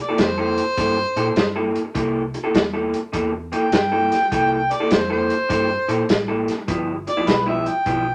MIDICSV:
0, 0, Header, 1, 6, 480
1, 0, Start_track
1, 0, Tempo, 589971
1, 1594, Time_signature, 4, 2, 24, 8
1, 6630, End_track
2, 0, Start_track
2, 0, Title_t, "Harmonica"
2, 0, Program_c, 0, 22
2, 12, Note_on_c, 0, 74, 76
2, 163, Note_on_c, 0, 72, 83
2, 175, Note_off_c, 0, 74, 0
2, 314, Note_off_c, 0, 72, 0
2, 318, Note_on_c, 0, 72, 94
2, 1247, Note_off_c, 0, 72, 0
2, 2876, Note_on_c, 0, 79, 104
2, 3846, Note_on_c, 0, 74, 91
2, 3858, Note_off_c, 0, 79, 0
2, 4004, Note_on_c, 0, 72, 87
2, 4017, Note_off_c, 0, 74, 0
2, 4155, Note_off_c, 0, 72, 0
2, 4161, Note_on_c, 0, 72, 102
2, 5089, Note_off_c, 0, 72, 0
2, 5768, Note_on_c, 0, 74, 102
2, 5923, Note_on_c, 0, 71, 85
2, 5935, Note_off_c, 0, 74, 0
2, 6074, Note_off_c, 0, 71, 0
2, 6089, Note_on_c, 0, 76, 86
2, 6249, Note_on_c, 0, 79, 102
2, 6261, Note_off_c, 0, 76, 0
2, 6630, Note_off_c, 0, 79, 0
2, 6630, End_track
3, 0, Start_track
3, 0, Title_t, "Clean electric guitar"
3, 0, Program_c, 1, 27
3, 70, Note_on_c, 1, 69, 89
3, 76, Note_on_c, 1, 64, 78
3, 77, Note_on_c, 1, 58, 85
3, 83, Note_on_c, 1, 48, 79
3, 201, Note_off_c, 1, 69, 0
3, 204, Note_off_c, 1, 58, 0
3, 204, Note_off_c, 1, 64, 0
3, 207, Note_off_c, 1, 48, 0
3, 307, Note_on_c, 1, 69, 99
3, 314, Note_on_c, 1, 64, 98
3, 316, Note_on_c, 1, 58, 75
3, 318, Note_on_c, 1, 48, 72
3, 493, Note_off_c, 1, 69, 0
3, 496, Note_off_c, 1, 64, 0
3, 498, Note_off_c, 1, 48, 0
3, 498, Note_off_c, 1, 58, 0
3, 631, Note_on_c, 1, 48, 85
3, 636, Note_on_c, 1, 58, 83
3, 637, Note_on_c, 1, 64, 86
3, 642, Note_on_c, 1, 69, 88
3, 782, Note_off_c, 1, 69, 0
3, 786, Note_off_c, 1, 64, 0
3, 787, Note_off_c, 1, 58, 0
3, 791, Note_off_c, 1, 48, 0
3, 948, Note_on_c, 1, 48, 87
3, 952, Note_on_c, 1, 58, 91
3, 954, Note_on_c, 1, 69, 97
3, 955, Note_on_c, 1, 64, 88
3, 1056, Note_off_c, 1, 48, 0
3, 1058, Note_off_c, 1, 58, 0
3, 1059, Note_off_c, 1, 64, 0
3, 1059, Note_off_c, 1, 69, 0
3, 1266, Note_on_c, 1, 69, 95
3, 1269, Note_on_c, 1, 58, 75
3, 1270, Note_on_c, 1, 64, 86
3, 1275, Note_on_c, 1, 48, 73
3, 1453, Note_off_c, 1, 69, 0
3, 1454, Note_off_c, 1, 58, 0
3, 1454, Note_off_c, 1, 64, 0
3, 1457, Note_off_c, 1, 48, 0
3, 1583, Note_on_c, 1, 48, 84
3, 1588, Note_on_c, 1, 58, 81
3, 1591, Note_on_c, 1, 64, 84
3, 1594, Note_on_c, 1, 69, 89
3, 1795, Note_off_c, 1, 48, 0
3, 1797, Note_off_c, 1, 58, 0
3, 1799, Note_off_c, 1, 64, 0
3, 1800, Note_off_c, 1, 69, 0
3, 1983, Note_on_c, 1, 69, 103
3, 1989, Note_on_c, 1, 64, 86
3, 1993, Note_on_c, 1, 48, 73
3, 1994, Note_on_c, 1, 58, 83
3, 2117, Note_off_c, 1, 69, 0
3, 2120, Note_off_c, 1, 64, 0
3, 2122, Note_off_c, 1, 48, 0
3, 2122, Note_off_c, 1, 58, 0
3, 2225, Note_on_c, 1, 69, 99
3, 2226, Note_on_c, 1, 64, 87
3, 2233, Note_on_c, 1, 58, 81
3, 2235, Note_on_c, 1, 48, 85
3, 2412, Note_off_c, 1, 69, 0
3, 2413, Note_off_c, 1, 64, 0
3, 2416, Note_off_c, 1, 58, 0
3, 2417, Note_off_c, 1, 48, 0
3, 2543, Note_on_c, 1, 48, 84
3, 2548, Note_on_c, 1, 58, 88
3, 2551, Note_on_c, 1, 64, 85
3, 2553, Note_on_c, 1, 69, 95
3, 2696, Note_off_c, 1, 69, 0
3, 2698, Note_off_c, 1, 64, 0
3, 2701, Note_off_c, 1, 58, 0
3, 2707, Note_off_c, 1, 48, 0
3, 2864, Note_on_c, 1, 48, 85
3, 2865, Note_on_c, 1, 58, 90
3, 2871, Note_on_c, 1, 64, 88
3, 2873, Note_on_c, 1, 69, 99
3, 2973, Note_off_c, 1, 48, 0
3, 2974, Note_off_c, 1, 58, 0
3, 2977, Note_off_c, 1, 64, 0
3, 2978, Note_off_c, 1, 69, 0
3, 3187, Note_on_c, 1, 69, 82
3, 3192, Note_on_c, 1, 64, 90
3, 3194, Note_on_c, 1, 58, 71
3, 3197, Note_on_c, 1, 48, 75
3, 3373, Note_off_c, 1, 69, 0
3, 3375, Note_off_c, 1, 64, 0
3, 3376, Note_off_c, 1, 58, 0
3, 3378, Note_off_c, 1, 48, 0
3, 3511, Note_on_c, 1, 48, 86
3, 3514, Note_on_c, 1, 58, 83
3, 3516, Note_on_c, 1, 64, 83
3, 3519, Note_on_c, 1, 69, 91
3, 3719, Note_off_c, 1, 48, 0
3, 3720, Note_off_c, 1, 58, 0
3, 3721, Note_off_c, 1, 64, 0
3, 3723, Note_off_c, 1, 69, 0
3, 3906, Note_on_c, 1, 69, 99
3, 3908, Note_on_c, 1, 64, 96
3, 3912, Note_on_c, 1, 58, 91
3, 3915, Note_on_c, 1, 48, 79
3, 4039, Note_off_c, 1, 69, 0
3, 4040, Note_off_c, 1, 64, 0
3, 4042, Note_off_c, 1, 58, 0
3, 4043, Note_off_c, 1, 48, 0
3, 4147, Note_on_c, 1, 69, 98
3, 4152, Note_on_c, 1, 64, 94
3, 4156, Note_on_c, 1, 58, 82
3, 4159, Note_on_c, 1, 48, 73
3, 4333, Note_off_c, 1, 69, 0
3, 4335, Note_off_c, 1, 64, 0
3, 4337, Note_off_c, 1, 58, 0
3, 4339, Note_off_c, 1, 48, 0
3, 4467, Note_on_c, 1, 48, 86
3, 4471, Note_on_c, 1, 58, 83
3, 4476, Note_on_c, 1, 64, 89
3, 4478, Note_on_c, 1, 69, 89
3, 4616, Note_off_c, 1, 69, 0
3, 4622, Note_off_c, 1, 64, 0
3, 4623, Note_off_c, 1, 58, 0
3, 4629, Note_off_c, 1, 48, 0
3, 4787, Note_on_c, 1, 48, 78
3, 4790, Note_on_c, 1, 58, 92
3, 4792, Note_on_c, 1, 64, 92
3, 4795, Note_on_c, 1, 69, 101
3, 4895, Note_off_c, 1, 48, 0
3, 4896, Note_off_c, 1, 58, 0
3, 4898, Note_off_c, 1, 64, 0
3, 4899, Note_off_c, 1, 69, 0
3, 5111, Note_on_c, 1, 69, 89
3, 5115, Note_on_c, 1, 58, 86
3, 5115, Note_on_c, 1, 64, 76
3, 5121, Note_on_c, 1, 48, 74
3, 5295, Note_off_c, 1, 69, 0
3, 5297, Note_off_c, 1, 58, 0
3, 5297, Note_off_c, 1, 64, 0
3, 5300, Note_off_c, 1, 48, 0
3, 5433, Note_on_c, 1, 43, 83
3, 5435, Note_on_c, 1, 53, 88
3, 5439, Note_on_c, 1, 59, 96
3, 5442, Note_on_c, 1, 64, 85
3, 5640, Note_off_c, 1, 43, 0
3, 5641, Note_off_c, 1, 53, 0
3, 5643, Note_off_c, 1, 59, 0
3, 5644, Note_off_c, 1, 64, 0
3, 5834, Note_on_c, 1, 64, 98
3, 5837, Note_on_c, 1, 59, 84
3, 5840, Note_on_c, 1, 53, 78
3, 5843, Note_on_c, 1, 43, 77
3, 5962, Note_off_c, 1, 64, 0
3, 5964, Note_off_c, 1, 59, 0
3, 5965, Note_off_c, 1, 53, 0
3, 5967, Note_off_c, 1, 43, 0
3, 6072, Note_on_c, 1, 64, 93
3, 6075, Note_on_c, 1, 59, 97
3, 6079, Note_on_c, 1, 53, 90
3, 6082, Note_on_c, 1, 43, 77
3, 6255, Note_off_c, 1, 64, 0
3, 6257, Note_off_c, 1, 59, 0
3, 6259, Note_off_c, 1, 53, 0
3, 6260, Note_off_c, 1, 43, 0
3, 6395, Note_on_c, 1, 43, 82
3, 6397, Note_on_c, 1, 53, 88
3, 6400, Note_on_c, 1, 59, 87
3, 6403, Note_on_c, 1, 64, 93
3, 6545, Note_off_c, 1, 64, 0
3, 6546, Note_off_c, 1, 59, 0
3, 6551, Note_off_c, 1, 53, 0
3, 6553, Note_off_c, 1, 43, 0
3, 6630, End_track
4, 0, Start_track
4, 0, Title_t, "Fingered electric bass"
4, 0, Program_c, 2, 33
4, 151, Note_on_c, 2, 41, 87
4, 474, Note_off_c, 2, 41, 0
4, 633, Note_on_c, 2, 43, 86
4, 846, Note_off_c, 2, 43, 0
4, 945, Note_on_c, 2, 46, 90
4, 1057, Note_off_c, 2, 46, 0
4, 1104, Note_on_c, 2, 43, 77
4, 1430, Note_off_c, 2, 43, 0
4, 1588, Note_on_c, 2, 36, 88
4, 1913, Note_off_c, 2, 36, 0
4, 2067, Note_on_c, 2, 40, 85
4, 2392, Note_off_c, 2, 40, 0
4, 2549, Note_on_c, 2, 40, 98
4, 2873, Note_off_c, 2, 40, 0
4, 3025, Note_on_c, 2, 43, 86
4, 3350, Note_off_c, 2, 43, 0
4, 3513, Note_on_c, 2, 36, 93
4, 3836, Note_off_c, 2, 36, 0
4, 3996, Note_on_c, 2, 41, 80
4, 4318, Note_off_c, 2, 41, 0
4, 4475, Note_on_c, 2, 43, 97
4, 4688, Note_off_c, 2, 43, 0
4, 4789, Note_on_c, 2, 46, 93
4, 4899, Note_off_c, 2, 46, 0
4, 4954, Note_on_c, 2, 33, 85
4, 5277, Note_off_c, 2, 33, 0
4, 5434, Note_on_c, 2, 31, 93
4, 5757, Note_off_c, 2, 31, 0
4, 5915, Note_on_c, 2, 35, 83
4, 6237, Note_off_c, 2, 35, 0
4, 6397, Note_on_c, 2, 35, 86
4, 6630, Note_off_c, 2, 35, 0
4, 6630, End_track
5, 0, Start_track
5, 0, Title_t, "Muted clean electric guitar strokes"
5, 792, Note_on_c, 9, 29, 54
5, 874, Note_off_c, 9, 29, 0
5, 1504, Note_on_c, 9, 29, 55
5, 1585, Note_off_c, 9, 29, 0
5, 1906, Note_on_c, 9, 29, 43
5, 1987, Note_off_c, 9, 29, 0
5, 2706, Note_on_c, 9, 29, 48
5, 2787, Note_off_c, 9, 29, 0
5, 3433, Note_on_c, 9, 29, 57
5, 3514, Note_off_c, 9, 29, 0
5, 3832, Note_on_c, 9, 29, 45
5, 3913, Note_off_c, 9, 29, 0
5, 4626, Note_on_c, 9, 29, 51
5, 4707, Note_off_c, 9, 29, 0
5, 5357, Note_on_c, 9, 29, 51
5, 5438, Note_off_c, 9, 29, 0
5, 5752, Note_on_c, 9, 29, 39
5, 5834, Note_off_c, 9, 29, 0
5, 6554, Note_on_c, 9, 29, 52
5, 6630, Note_off_c, 9, 29, 0
5, 6630, End_track
6, 0, Start_track
6, 0, Title_t, "Drums"
6, 147, Note_on_c, 9, 42, 86
6, 155, Note_on_c, 9, 38, 105
6, 228, Note_off_c, 9, 42, 0
6, 236, Note_off_c, 9, 38, 0
6, 468, Note_on_c, 9, 42, 61
6, 549, Note_off_c, 9, 42, 0
6, 630, Note_on_c, 9, 42, 81
6, 631, Note_on_c, 9, 36, 104
6, 711, Note_off_c, 9, 42, 0
6, 712, Note_off_c, 9, 36, 0
6, 948, Note_on_c, 9, 42, 61
6, 1029, Note_off_c, 9, 42, 0
6, 1107, Note_on_c, 9, 42, 75
6, 1115, Note_on_c, 9, 38, 107
6, 1188, Note_off_c, 9, 42, 0
6, 1196, Note_off_c, 9, 38, 0
6, 1427, Note_on_c, 9, 42, 59
6, 1508, Note_off_c, 9, 42, 0
6, 1587, Note_on_c, 9, 42, 77
6, 1590, Note_on_c, 9, 36, 104
6, 1668, Note_off_c, 9, 42, 0
6, 1671, Note_off_c, 9, 36, 0
6, 1905, Note_on_c, 9, 42, 55
6, 1986, Note_off_c, 9, 42, 0
6, 2071, Note_on_c, 9, 42, 79
6, 2079, Note_on_c, 9, 38, 114
6, 2152, Note_off_c, 9, 42, 0
6, 2160, Note_off_c, 9, 38, 0
6, 2389, Note_on_c, 9, 42, 61
6, 2471, Note_off_c, 9, 42, 0
6, 2550, Note_on_c, 9, 42, 73
6, 2551, Note_on_c, 9, 36, 101
6, 2632, Note_off_c, 9, 36, 0
6, 2632, Note_off_c, 9, 42, 0
6, 2868, Note_on_c, 9, 42, 61
6, 2950, Note_off_c, 9, 42, 0
6, 3028, Note_on_c, 9, 42, 88
6, 3036, Note_on_c, 9, 38, 103
6, 3109, Note_off_c, 9, 42, 0
6, 3118, Note_off_c, 9, 38, 0
6, 3350, Note_on_c, 9, 42, 65
6, 3359, Note_on_c, 9, 38, 32
6, 3432, Note_off_c, 9, 42, 0
6, 3440, Note_off_c, 9, 38, 0
6, 3513, Note_on_c, 9, 36, 107
6, 3514, Note_on_c, 9, 42, 93
6, 3595, Note_off_c, 9, 36, 0
6, 3595, Note_off_c, 9, 42, 0
6, 3830, Note_on_c, 9, 42, 55
6, 3912, Note_off_c, 9, 42, 0
6, 3991, Note_on_c, 9, 42, 92
6, 4000, Note_on_c, 9, 38, 111
6, 4073, Note_off_c, 9, 42, 0
6, 4081, Note_off_c, 9, 38, 0
6, 4312, Note_on_c, 9, 42, 60
6, 4394, Note_off_c, 9, 42, 0
6, 4474, Note_on_c, 9, 36, 104
6, 4476, Note_on_c, 9, 42, 81
6, 4556, Note_off_c, 9, 36, 0
6, 4557, Note_off_c, 9, 42, 0
6, 4791, Note_on_c, 9, 42, 66
6, 4872, Note_off_c, 9, 42, 0
6, 4955, Note_on_c, 9, 42, 86
6, 4963, Note_on_c, 9, 38, 110
6, 5036, Note_off_c, 9, 42, 0
6, 5044, Note_off_c, 9, 38, 0
6, 5273, Note_on_c, 9, 42, 62
6, 5281, Note_on_c, 9, 38, 32
6, 5355, Note_off_c, 9, 42, 0
6, 5363, Note_off_c, 9, 38, 0
6, 5436, Note_on_c, 9, 36, 105
6, 5436, Note_on_c, 9, 42, 76
6, 5517, Note_off_c, 9, 42, 0
6, 5518, Note_off_c, 9, 36, 0
6, 5755, Note_on_c, 9, 42, 56
6, 5836, Note_off_c, 9, 42, 0
6, 5917, Note_on_c, 9, 42, 85
6, 5925, Note_on_c, 9, 38, 113
6, 5998, Note_off_c, 9, 42, 0
6, 6006, Note_off_c, 9, 38, 0
6, 6234, Note_on_c, 9, 42, 59
6, 6315, Note_off_c, 9, 42, 0
6, 6394, Note_on_c, 9, 42, 67
6, 6396, Note_on_c, 9, 36, 97
6, 6475, Note_off_c, 9, 42, 0
6, 6477, Note_off_c, 9, 36, 0
6, 6630, End_track
0, 0, End_of_file